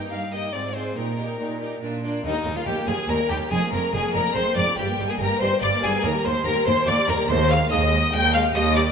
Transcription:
Already playing: A#3 D#4 G4 G5
0.10 G2 D#4 G4 F5
0.32 A#3 D#4 G4 D#5
0.53 G#2 C4 F4 D5
0.75 G#3 C4 F4 C5
0.96 A#2 D#4 G4 A#4
1.18 D#4 G4
1.39 A#2 D#4 G4
1.61 D#4 G4
1.82 A#2 D4 F4
2.04 A#3 D4 F4
2.24 D#2 G3 D#4 D#5
2.35 A#3
2.46 D#2 G3 D#4
2.56 A#3 F4 F5
2.67 D#2 G3 G4 G5
2.77 A#3
2.87 D#2 G3 D#4 G#4 G#5
2.99 A#3
3.09 D#2 G3 D4 A#4 A#5
3.20 A#3
3.30 D#2 G3 D#4 G4 G5
3.41 A#3
3.51 F1 F2 G#3 G#4 G#5
3.63 A#3
3.72 F1 F2 G#3 D4 A#4 A#5
3.83 A#3
3.93 F1 F2 G#3 G#4 A#4 G#5
4.05 A#3
4.14 F1 F2 G#3 D4 A#4 A#5
4.25 A#3
4.35 F1 F2 G#3 C4 C5 C6
4.46 A#3
4.57 F1 F2 G#3 D4 D5 D6
4.68 A#3
4.78 G1 G2 G3 G4 G5
4.88 A#3
4.99 G1 G2 G3 D#4
5.09 A#3 G#4 G#5
5.20 G1 G2 G3 G4 A#4 A#5
5.31 A#3
5.41 G1 G2 G3 D#4 C5 C6
5.52 A#3
5.62 G1 G2 G3 D4 D5 D6
5.73 A#3
5.82 G1 G2 G3 D#4 G#4 G#5
5.95 A#3
6.03 D#2 A#3 A#4 A#5
6.16 G3
6.25 D#2 A#3 D#4 C5 C6
6.37 G3
6.46 D#2 A#3 G4 A#4 A#5
6.57 G3
6.67 D#2 A#3 D#4 C5 C6
6.78 G3
6.88 D#2 A#3 D4 D5 D6
6.99 G3
7.08 D#2 A#3 D#4 A#4 A#5
7.19 G3
7.30 D#2 G#3 C5 C6
7.50 G#3 D#4 F5 F6
7.71 D#2 G#3 G#4 D#5 D#6
7.92 G#3 D#4
8.13 D#2 G#3 D4 G5 G6
8.34 G#3 D#4 F5 F6
8.55 D#2 G3 D#5 D#6
8.76 G3 D#4 D5 D6

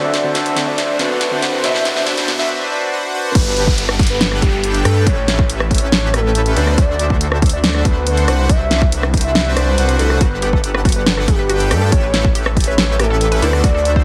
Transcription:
Already playing: D2 D3 C4 D4 F#4 A4 C5 D5 E5, riser
0.14 snare, closed hi-hat
0.23 D3 C4 F#4 F#5
0.35 snare, closed hi-hat
0.46 closed hi-hat
0.55 D3 C4 F#4 E5, snare, closed hi-hat
0.67 D5
0.78 snare, closed hi-hat
0.98 D2 D3 C4 D4 F#4 A4 B4 C5 E5 F#5, snare, closed hi-hat
1.21 snare, closed hi-hat
1.31 D3 C4 F#4 E5
1.42 C2 D4 F#4 B4 C5 F#5, snare, closed hi-hat
1.63 C2 C3 B3 D4 F#4 B4 C5 D5 E5, snare, closed hi-hat
1.75 snare
1.85 snare, closed hi-hat
1.95 C3 B3 F#4 D5 F#5, snare
2.07 snare, closed hi-hat
2.17 snare, closed hi-hat
2.27 C3 B3 F#4 D5 E5, snare, closed hi-hat
2.39 C2 D4 F#4 B4 C5 E5, snare
2.71 D4 F#4 B4 C5 D5
2.92 D4 F#4 B4 C5 F#5
3.14 D4 F#4 B4 C5 F#5
3.35 G1 D4 G4 A4 B4 F#5, kick, closed hi-hat, crash, downlifter
3.57 closed hi-hat
3.67 kick
3.78 closed hi-hat
3.89 cross-stick
3.99 kick, closed hi-hat
4.03 closed hi-hat
4.07 B4, closed hi-hat
4.21 snare, closed hi-hat
4.32 cross-stick
4.42 G1 D4 G4 A4 B4 G5, kick, closed hi-hat
4.64 closed hi-hat
4.74 closed hi-hat
4.85 G2 D4 G4 A4 B4 G5, cross-stick, closed hi-hat
5.06 A1 C#4 G4 A4 B4 C#5 E5, kick, closed hi-hat
5.28 snare, closed hi-hat
5.39 kick
5.50 closed hi-hat
5.60 cross-stick
5.71 kick, closed hi-hat
5.75 closed hi-hat
5.78 A1 C#4 G4 A4 B4 C#5 E5, closed hi-hat
5.92 snare, closed hi-hat
6.14 A4, cross-stick, closed hi-hat
6.35 closed hi-hat
6.46 closed hi-hat
6.56 D2 D4 F#4 A4 B4 C5 D5, closed hi-hat
6.67 cross-stick
6.78 D2 D4 F#4 A4 C5 D5 E5, kick, closed hi-hat
6.99 closed hi-hat
7.10 kick
7.21 closed hi-hat
7.32 cross-stick
7.42 kick, closed hi-hat
7.46 closed hi-hat
7.49 D5, closed hi-hat
7.64 snare, closed hi-hat
7.74 cross-stick
7.85 D2 D4 F#4 A4 B4 C5 F#5, kick, closed hi-hat
8.07 closed hi-hat
8.17 closed hi-hat
8.28 C2 D4 F#4 B4 C5 F#5, cross-stick, closed hi-hat
8.49 C2 D4 F#4 B4 C5 E5, kick, closed hi-hat
8.71 snare, closed hi-hat
8.82 kick
8.92 closed hi-hat
9.03 cross-stick
9.14 kick, closed hi-hat
9.17 closed hi-hat
9.21 C2 D4 F#4 B4 C5 E5, closed hi-hat
9.35 snare, closed hi-hat
9.57 C2 D4 F#4 B4 C5 D5, cross-stick, closed hi-hat
9.78 C2 D4 F#4 B4 C5 F#5, closed hi-hat
9.89 closed hi-hat
9.99 C2 D4 F#4 A4 B4 C5 F#5, closed hi-hat
10.10 cross-stick
10.21 G1 D4 F#4 G4 A4 B4 F#5, kick, closed hi-hat
10.42 G4, closed hi-hat
10.53 A4, kick
10.64 closed hi-hat
10.74 B4, cross-stick
10.85 F#4, kick, closed hi-hat
10.89 closed hi-hat
10.92 B4, closed hi-hat
11.06 G4, snare, closed hi-hat
11.17 A4, cross-stick
11.28 G1 D4 G4 A4 B4 G5, kick, closed hi-hat
11.39 B4
11.49 F#4, closed hi-hat
11.60 closed hi-hat
11.71 G2 D4 G4 A4 B4 G5, cross-stick, closed hi-hat
11.82 A4
11.92 A1 C#4 G4 A4 B4 C#5 E5, kick, closed hi-hat
12.03 B4
12.14 E4, snare, closed hi-hat
12.25 kick
12.35 G4, closed hi-hat
12.46 A4, cross-stick
12.57 kick, closed hi-hat
12.60 closed hi-hat
12.64 A1 C#4 G4 A4 B4 C#5 E5, closed hi-hat
12.78 E4, snare, closed hi-hat
12.99 G4 A4, cross-stick, closed hi-hat
13.10 A4
13.21 closed hi-hat
13.32 B4, closed hi-hat
13.42 D2 D4 E4 F#4 A4 B4 C5 D5, closed hi-hat
13.53 cross-stick
13.64 D2 D4 F#4 A4 C5 D5 E5, kick, closed hi-hat
13.75 A4
13.85 closed hi-hat
13.96 C5, kick

